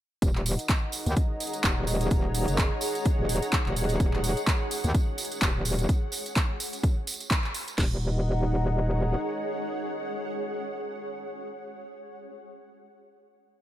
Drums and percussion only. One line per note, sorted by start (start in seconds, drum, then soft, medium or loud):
0.22 kick loud
0.22 closed hi-hat medium
0.22 tambourine soft
0.36 clap soft
0.46 open hi-hat loud
0.46 tambourine loud
0.59 closed hi-hat medium
0.59 tambourine soft
0.69 kick loud
0.69 clap loud
0.69 closed hi-hat medium
0.69 tambourine soft
0.92 open hi-hat loud
0.92 tambourine loud
1.06 closed hi-hat medium
1.06 tambourine medium
1.16 kick loud
1.16 closed hi-hat medium
1.16 tambourine soft
1.40 open hi-hat loud
1.40 tambourine loud
1.47 closed hi-hat medium
1.53 closed hi-hat medium
1.53 tambourine medium
1.64 kick loud
1.64 clap loud
1.64 closed hi-hat medium
1.64 tambourine soft
1.87 open hi-hat loud
1.87 tambourine medium
2.01 closed hi-hat medium
2.01 tambourine soft
2.10 kick loud
2.10 closed hi-hat medium
2.10 tambourine soft
2.34 open hi-hat loud
2.34 tambourine loud
2.48 closed hi-hat medium
2.48 tambourine medium
2.58 kick loud
2.58 clap loud
2.58 closed hi-hat medium
2.81 open hi-hat loud
2.81 tambourine loud
2.95 closed hi-hat medium
2.95 tambourine medium
3.05 kick loud
3.05 closed hi-hat medium
3.05 tambourine soft
3.29 open hi-hat loud
3.29 tambourine medium
3.36 closed hi-hat medium
3.42 closed hi-hat medium
3.42 tambourine medium
3.52 kick loud
3.52 clap loud
3.52 closed hi-hat medium
3.52 tambourine soft
3.66 clap soft
3.76 open hi-hat loud
3.76 tambourine loud
3.89 closed hi-hat medium
3.89 tambourine medium
4.00 kick loud
4.00 closed hi-hat medium
4.00 tambourine soft
4.13 clap soft
4.24 open hi-hat loud
4.24 tambourine loud
4.37 closed hi-hat medium
4.37 tambourine medium
4.47 kick loud
4.47 clap loud
4.47 closed hi-hat medium
4.47 tambourine soft
4.71 open hi-hat loud
4.71 tambourine loud
4.84 closed hi-hat soft
4.84 tambourine medium
4.95 kick loud
4.95 closed hi-hat medium
4.95 tambourine soft
5.18 open hi-hat loud
5.18 tambourine loud
5.25 closed hi-hat medium
5.32 closed hi-hat medium
5.32 tambourine medium
5.42 kick loud
5.42 clap loud
5.42 closed hi-hat medium
5.65 open hi-hat loud
5.65 tambourine loud
5.78 closed hi-hat medium
5.78 tambourine medium
5.89 kick loud
5.89 closed hi-hat medium
5.89 tambourine soft
6.12 open hi-hat loud
6.12 tambourine loud
6.26 closed hi-hat medium
6.26 tambourine medium
6.36 kick loud
6.36 clap loud
6.36 closed hi-hat medium
6.36 tambourine soft
6.60 open hi-hat loud
6.60 tambourine loud
6.73 closed hi-hat medium
6.73 tambourine medium
6.83 kick loud
6.83 closed hi-hat medium
6.83 tambourine soft
7.07 open hi-hat loud
7.07 tambourine loud
7.14 closed hi-hat medium
7.20 closed hi-hat medium
7.20 tambourine medium
7.31 kick loud
7.31 clap loud
7.31 closed hi-hat medium
7.31 tambourine soft
7.44 clap soft
7.54 open hi-hat loud
7.54 tambourine medium
7.68 closed hi-hat medium
7.68 tambourine medium
7.78 kick loud
7.78 snare loud
7.78 crash medium